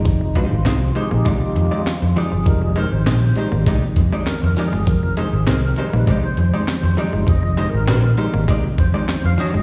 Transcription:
<<
  \new Staff \with { instrumentName = "Hollow-body jazz guitar" } { \time 4/4 \key f \dorian \tempo 4 = 100 r8 <aes ees' g' c''>16 r16 <aes ees' g' c''>16 r16 <aes ees' g' c''>16 r16 <aes ees' g' d''>16 r8 <aes ees' g' d''>16 r8 <aes ees' g' d''>16 r16 | r8 <aes ees' g' c''>16 r16 <aes ees' g' c''>16 r16 <aes ees' g' c''>16 r16 <aes ees' g' d''>16 r8 <aes ees' g' d''>16 r8 <aes ees' g' d''>16 r16 | r8 <aes ees' g' c''>16 r16 <aes ees' g' c''>16 r16 <aes ees' g' c''>16 r16 <aes ees' g' d''>16 r8 <aes ees' g' d''>16 r8 <aes ees' g' d''>16 r16 | r8 <aes ees' g' c''>16 r16 <aes ees' g' c''>16 r16 <aes ees' g' c''>16 r16 <aes ees' g' d''>16 r8 <aes ees' g' d''>16 r8 <aes ees' g' d''>16 r16 | }
  \new Staff \with { instrumentName = "Tonewheel organ" } { \time 4/4 \key f \dorian ees'8 f'4 aes'8 f'8. f'8. aes'8 | bes'16 aes'16 bes'16 c''4 r4 r16 \tuplet 3/2 { bes'4 aes'8 } | bes'8 aes'8 \tuplet 3/2 { bes'4 b'8 } c''2 | \tuplet 3/2 { ees''4 bes'8~ } bes'4~ bes'16 r16 c''8. f''16 ees''8 | }
  \new Staff \with { instrumentName = "Tonewheel organ" } { \clef bass \time 4/4 \key f \dorian r4. <aes ees' g'>4. r4 | <g aes ees'>8 r4 <g aes ees'>8 r2 | r4. <g aes ees'>8 r4. <g aes ees'>8 | r4. <g aes ees'>8 r2 | }
  \new Staff \with { instrumentName = "Clean electric guitar" } { \clef bass \time 4/4 \key f \dorian f16 r16 aes16 r16 c'16 r8 bes16 aes16 r8 aes16 r8 f16 f16 | f16 r16 aes16 r16 c'16 r8 bes16 aes16 r8 aes16 r8 f16 aes16 | f16 r16 aes16 r16 c'16 r8 bes16 aes16 r8 aes16 r8 f16 aes16 | f16 r16 aes16 r16 c'16 r8 bes16 aes16 r8 aes16 r8 f16 aes16 | }
  \new Staff \with { instrumentName = "Tonewheel organ" } { \clef bass \time 4/4 \key f \dorian <ees f c'>1~ | <ees f c'>1~ | <ees f c'>1~ | <ees f c'>1 | }
  \new Staff \with { instrumentName = "Fingered electric bass" } { \clef bass \time 4/4 \key f \dorian f,,8. aes,,16 c,8 r16 bes,,16 c,16 r16 f,16 r8 f,16 r16 g,,16 | f,,8. aes,,16 bes,,8 r16 aes,,16 c,16 r16 f,16 r8 f,16 r16 g,,16 | f,,8. aes,,16 c,8 r16 bes,,16 c,16 r16 f,16 r8 f,16 r16 g,,16 | f,,8. aes,,16 bes,,8 r16 aes,,16 c,16 r16 f,16 r8 f,16 r16 g,,16 | }
  \new DrumStaff \with { instrumentName = "Drums" } \drummode { \time 4/4 <hh bd>8 <hh bd>8 <hc hh sn>8 hh8 <hh bd>8 hh8 <hc hh sn>8 hho8 | <hh bd>8 hh8 <hc hh sn>8 hh8 <hh bd>8 <hh bd>8 <hc hh sn>8 hho8 | <hh bd>8 hh8 <hc hh sn>8 hh8 <hh bd>8 hh8 <hc hh sn>8 hho8 | <hh bd>8 hh8 <hc hh sn>8 hh8 <hh bd>8 <hh bd>8 <hc hh sn>8 hho8 | }
>>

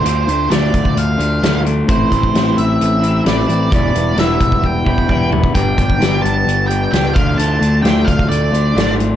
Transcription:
<<
  \new Staff \with { instrumentName = "Lead electric guitar" } { \time 4/4 \key d \dorian \tempo 4 = 131 c''4 d''4 f''4. r8 | c''4. e''4. d''4 | d''4 e''4 g''4. r8 | g''4. a''4 g''8 g''8 f''8 |
a''4 g''8 f''8 d''4. r8 | }
  \new Staff \with { instrumentName = "Clean electric guitar" } { \time 4/4 \key d \dorian <d a d' f'>8 <a d' f'>8 <d a d' f'>4. <a d' f'>8 <d a d' f'>8 <a d' f'>8 | <a, e a c' e'>8 <a c' e'>8 <a, e a c' e'>4. <a c' e'>8 <e a c' e'>8 <a c' e'>8 | <e, b, e g b e'>8 <e g b e'>8 <e, b, e g b e'>4. <e g b e'>8 <e g b e'>8 <e g b e'>8 | <g, d g b d' g'>8 <g b d' g'>8 <g, d g b d' g'>4. <g b d' g'>8 <g b d' g'>8 <d a d' f'>8 |
<d a d' f'>8 <a d' f'>8 <d a d' f'>4. <a d' f'>8 <d a d' f'>8 <a d' f'>8 | }
  \new Staff \with { instrumentName = "Picked electric bass" } { \clef bass \time 4/4 \key d \dorian d,8 d,8 d,8 d,8 d,8 d,8 d,4 | a,,8 a,,8 a,,8 a,,8 a,,4 a,,8 a,,8 | e,,8 e,,8 e,,8 e,,8 e,,8 e,,8 e,,4 | g,,8 g,,8 g,,8 g,,8 g,,4 cis,8 d,8 |
d,8 d,8 d,8 d,8 d,8 d,8 gis,,4 | }
  \new DrumStaff \with { instrumentName = "Drums" } \drummode { \time 4/4 hh8 hh8 <hh sn>8 <hh bd>16 bd16 hh8 hh8 <hh sn>8 hh8 | <hh bd>8 <hh bd>16 bd16 <hh sn>8 hh8 hh8 hh8 <hh sn>8 hh8 | <hh bd>8 hh8 <hh sn>8 <hh bd>16 bd16 bd8 bd16 bd16 bd8 tomfh16 bd16 | <hh bd>8 <hh bd>16 bd16 <hh sn>8 hh8 hh8 hh8 <hh sn>8 <hh bd>8 |
hh8 hh8 <hh sn>8 <hh bd>16 bd16 hh8 hh8 <hh sn>8 hh8 | }
>>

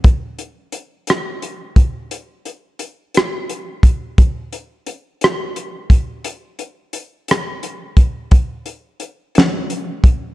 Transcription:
\new DrumStaff \with { instrumentName = "Drums" } \drummode { \time 6/8 \tempo 4. = 58 <hh bd>8 hh8 hh8 <hh ss>8 hh8 <hh bd>8 | hh8 hh8 hh8 <hh ss>8 hh8 <hh bd>8 | <hh bd>8 hh8 hh8 <hh ss>8 hh8 <hh bd>8 | hh8 hh8 hh8 <hh ss>8 hh8 <hh bd>8 |
<hh bd>8 hh8 hh8 <hh sn>8 hh8 <hh bd>8 | }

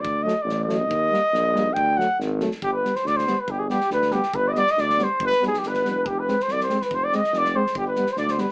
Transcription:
<<
  \new Staff \with { instrumentName = "Trumpet" } { \time 2/4 \tempo 4 = 140 d''8 ees''8 d''8 ees''8~ | ees''2 | g''8 fis''8 r4 | g'16 b'8 c''16 d''16 c''8 b'16 |
g'16 aes'16 g'8 b'8 g'8 | b'16 d''32 ees''32 d''16 ees''16 d''8 c''8 | b'8 aes'16 g'16 b'4 | g'16 b'8 c''16 d''16 c''8 b'16 |
c''16 d''16 ees''8 d''8 c''8 | g'16 b'8 c''16 d''16 c''16 b'16 r16 | }
  \new Staff \with { instrumentName = "Clarinet" } { \time 2/4 r2 | r2 | r2 | g'16 b'8 c''16 d''16 c''8 b'16 |
g'16 aes'16 g'8 b'8 g'8 | b'16 r32 ees''32 d''16 ees''16 d''8 c''8 | b'8 aes'16 g'16 b'4 | g'16 b'8 c''16 d''16 c''8 b'16 |
c''16 d''16 ees''8 d''8 c''8 | g'16 b'8 c''16 d''16 c''16 b'16 r16 | }
  \new Staff \with { instrumentName = "Trombone" } { \time 2/4 r8 a8 r8 a8 | r8 bes8 r8 bes8 | r8 a8 r8 a8 | r8 b8 r8 b8 |
r8 b8 r8 b8 | r8 b8 r8 b8 | r8 b8 r8 b8 | r8 c'8 r8 c'8 |
r8 c'8 r8 c'8 | r8 b8 r8 b8 | }
  \new Staff \with { instrumentName = "Euphonium" } { \clef bass \time 2/4 r8 fis8 r8 fis8 | r8 g8 r8 g8 | r8 fis8 r8 fis8 | r8 g8 r8 g8 |
r8 g8 r8 g8 | r8 g8 r8 g8 | r8 g8 r8 g8 | r8 aes8 r8 aes8 |
r8 aes8 r8 aes8 | r8 g8 r8 g8 | }
  \new Staff \with { instrumentName = "Tuba" } { \clef bass \time 2/4 d,4 a,,4 | ees,4 bes,,4 | d,4 gis,,4 | g,,4 d,4 |
g,,4 d,4 | g,,4 d,4 | g,,8 b,,8 g,,8 f,,8 | f,,4 c,4 |
f,,4 f,,4 | g,,4 d,4 | }
  \new DrumStaff \with { instrumentName = "Drums" } \drummode { \time 2/4 bd8 sn8 sn8 sn8 | bd8 sn8 sn8 sn8 | bd8 sn8 sn8 sn16 sn16 | bd8 sn16 sn16 sn16 sn16 sn8 |
bd8 sn16 sn16 sn16 sn16 sn16 sn16 | bd8 sn16 sn16 sn16 sn16 sn8 | bd16 sn16 sn16 sn16 sn16 sn16 sn8 | bd8 sn16 sn16 sn16 sn16 sn16 sn16 |
bd8 sn16 sn16 sn16 sn8 sn16 | bd8 sn16 sn16 sn16 sn16 sn8 | }
>>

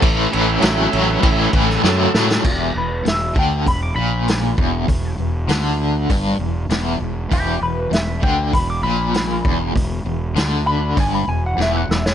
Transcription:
<<
  \new Staff \with { instrumentName = "Lead electric guitar" } { \time 4/4 \key a \major \tempo 4 = 99 r1 | g'8 b'8 e''8 g''8 b''16 d'''16 b''4.~ | b''8 r2. r8 | g'8 b'8 e''8 g''8 b''16 d'''16 b''4.~ |
b''8 r4 b''8 gis''16 b''16 gis''16 fis''16 e''16 fis''16 e''16 cis''16 | }
  \new Staff \with { instrumentName = "Tonewheel organ" } { \time 4/4 \key a \major << { \tuplet 3/2 { r4 <fis'' g''>8~ <fis'' g''>8 e''8 b'8 e''8 b'8 a'8 } <gis' a'>4 | r1 | r1 | r1 |
r1 | } \\ { r8 <a cis' e'>4. <a cis' e'>8 r4. | r1 | r1 | r1 |
r1 | } >> }
  \new Staff \with { instrumentName = "Overdriven electric guitar" } { \clef bass \time 4/4 \key a \major <a, e>8 <a, e>8 <a, fis>8 <a, fis>8 <a, e>8 <a, e>8 <a, fis>8 <a, fis>8 | e,8 e,8 e,8 d8 e,8 ais,4 e,8 | e,8 e,8 d4 g,8 e,8 e,8 e,8 | e,8 e,8 e,8 d8 e,8 ais,4 e,8 |
e,8 e,8 d4 g,8 e,8 e,8 e,8 | }
  \new Staff \with { instrumentName = "Fingered electric bass" } { \clef bass \time 4/4 \key a \major a,,8 a,,8 a,,8 a,,8 a,,8 a,,8 fis,8 a,8 | e,,8 e,,8 e,,8 d,8 e,,8 ais,,4 e,,8 | e,,8 e,,8 d,4 g,,8 e,,8 e,,8 e,,8 | e,,8 e,,8 e,,8 d,8 e,,8 ais,,4 e,,8 |
e,,8 e,,8 d,4 g,,8 e,,8 e,,8 e,,8 | }
  \new DrumStaff \with { instrumentName = "Drums" } \drummode { \time 4/4 <cymc bd>8 cymc8 <cymc sn>8 cymc8 <cymc bd>8 <cymc bd>16 sn16 sn8 sn16 sn16 | <cymc bd>4 <hho sn>8 bd8 <hho bd>4 <hho sn>8 bd8 | <hho bd>4 <hho sn>4 <hho bd>4 <hho sn>4 | <hho bd>4 <hho sn>8 bd8 <hho bd>4 <hho sn>8 bd8 |
<hho bd>4 <hho sn>4 <hho bd>4 sn8 sn16 sn16 | }
>>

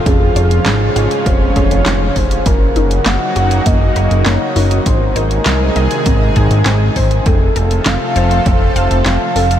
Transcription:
<<
  \new Staff \with { instrumentName = "Soft synth lead" } { \time 4/4 \key des \major \tempo 4 = 100 aes'4 aes'4 c''8 des''4 c''8 | bes'4 ges''4 ees''4 des''4 | c''8 bes'2 r4 c''8 | a'4 f''4 c''4 f''4 | }
  \new Staff \with { instrumentName = "Synth arpeggio sound" } { \time 4/4 \key des \major des'16 r16 des''8 des'8 f''8 des'8 aes'8 des'16 r16 des''16 r16 | bes16 r16 ees'8 bes8 ges'8 bes16 r16 bes'8 bes8 ees'16 r16 | c'16 r16 c''8 c'8 ees''8 c'8 aes'8 c'16 r16 c''16 r16 | c'16 r16 a'8 c'8 c''8 c'16 r16 f''8 c'8 a'16 r16 | }
  \new Staff \with { instrumentName = "Analog synth pad" } { \clef bass \time 4/4 \key des \major << { <aes, des f f'>1 | <ges bes ges'>1 | <c ees aes aes'>1 | <c f a a'>1 | } \\ { des'1 | ees'1~ | ees'1 | f'1 | } >> }
  \new Staff \with { instrumentName = "Analog synth bass" } { \clef bass \time 4/4 \key des \major f,,8 f,,8 aes,,8 aes,,16 r16 f,,8 f,,16 f,,16 f,,8 f,,8 | ges,,8 ges,,8 ges,,16 r16 ges,,8 ges,,8 ges,,16 ges,,16 ges,,16 r16 ges,,8 | aes,,8 aes,,8 c,8 c,16 r16 aes,,8 aes,,16 aes,,16 aes,,8 aes,,8 | f,,8 f,,8 f,,16 r16 f,,8 f,,8 f,,16 f,,16 f,,16 r16 f,,8 | }
  \new DrumStaff \with { instrumentName = "Drums" } \drummode { \time 4/4 <hh bd>8 hh16 hh16 <hc hh sn>8 hh16 hh16 <hh bd>8 <hh bd>16 hh16 <hc hh sn>8 <hho bd>16 hh16 | <hh bd>8 hh16 hh16 <hc hh sn>8 hh16 hh16 <hh bd>8 hh16 hh16 <hc hh sn>8 hho16 hh16 | <hh bd>8 hh16 hh16 <hc hh sn>8 hh16 hh16 <hh bd>8 <hh bd>16 hh16 <hc hh sn>8 <hho bd>16 hh16 | <hh bd>8 hh16 hh16 <hc hh sn>8 hh16 hh16 <hh bd>8 hh16 hh16 <hc hh sn>8 hho16 hh16 | }
>>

